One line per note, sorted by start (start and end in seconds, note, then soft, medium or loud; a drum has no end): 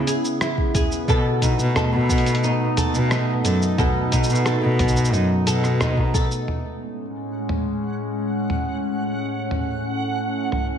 0.00 1.04 C#3 medium
0.00 1.08 C#3 medium
0.00 1.79 B3 medium
0.00 6.44 B3 medium
0.00 0.40 E4 medium
0.00 1.04 E4 medium
0.07 0.74 G#4 medium
0.07 closed hi-hat medium
0.07 cabasa medium
0.25 cabasa soft
0.41 1.15 E4 medium
0.41 cross-stick loud
0.41 cabasa soft
0.58 kick medium
0.74 1.09 G#4 medium
0.74 kick loud
0.74 closed hi-hat loud
0.74 mid tom medium
0.74 cabasa medium
0.92 cabasa soft
1.08 1.19 B2 loud
1.08 3.77 B2 medium
1.08 6.44 A3 medium
1.08 6.44 D#4 medium
1.08 1.76 A4 medium
1.08 kick loud
1.08 cabasa soft
1.42 1.52 B2 medium
1.42 2.42 D#4 medium
1.42 kick medium
1.42 closed hi-hat medium
1.42 cabasa medium
1.59 1.80 B2 loud
1.59 cabasa soft
1.76 2.77 A4 medium
1.76 cross-stick loud
1.76 mid tom medium
1.76 cabasa soft
1.93 2.67 B2 loud
2.09 4.78 B3 medium
2.09 kick loud
2.09 closed hi-hat soft
2.09 cabasa medium
2.18 closed hi-hat medium
2.26 closed hi-hat medium
2.26 cabasa soft
2.35 closed hi-hat medium
2.43 3.10 D#4 medium
2.43 cabasa soft
2.77 3.44 A4 medium
2.77 closed hi-hat medium
2.77 mid tom medium
2.77 cabasa medium
2.94 3.34 B2 loud
2.94 cabasa soft
3.11 4.11 D#4 medium
3.11 cross-stick loud
3.11 cabasa soft
3.44 3.55 F#2 medium
3.44 3.79 A4 medium
3.44 closed hi-hat medium
3.44 cabasa medium
3.62 cabasa soft
3.78 6.48 B2 medium
3.78 4.45 A4 medium
3.78 kick loud
3.78 mid tom medium
3.78 cabasa soft
4.12 4.22 B2 medium
4.12 5.12 D#4 medium
4.12 kick medium
4.12 closed hi-hat medium
4.12 cabasa medium
4.23 cabasa medium
4.29 4.49 B2 loud
4.29 cabasa soft
4.35 cabasa soft
4.46 5.46 A4 medium
4.46 cross-stick loud
4.46 cabasa soft
4.63 5.15 B2 loud
4.79 6.55 B3 medium
4.79 kick loud
4.79 closed hi-hat loud
4.79 mid tom medium
4.79 cabasa soft
4.88 cabasa soft
4.96 cabasa medium
5.05 cabasa medium
5.13 5.24 F#2 loud
5.13 5.79 D#4 medium
5.13 cabasa soft
5.47 6.20 B2 loud
5.47 6.14 A4 medium
5.47 closed hi-hat loud
5.47 cabasa medium
5.64 cross-stick soft
5.64 cabasa soft
5.80 6.55 D#4 medium
5.80 cross-stick loud
5.80 mid tom medium
5.80 cabasa soft
5.97 kick medium
6.14 7.05 A4 medium
6.14 kick loud
6.14 cabasa medium
6.31 cabasa soft
6.48 10.78 A2 medium
6.48 9.15 G#3 medium
6.48 10.78 C#4 medium
6.48 10.78 F#5 medium
6.48 10.78 F#6 medium
6.48 mid tom medium
7.49 mid tom medium
8.50 mid tom medium
9.18 10.78 A3 medium
9.51 mid tom medium
10.52 mid tom medium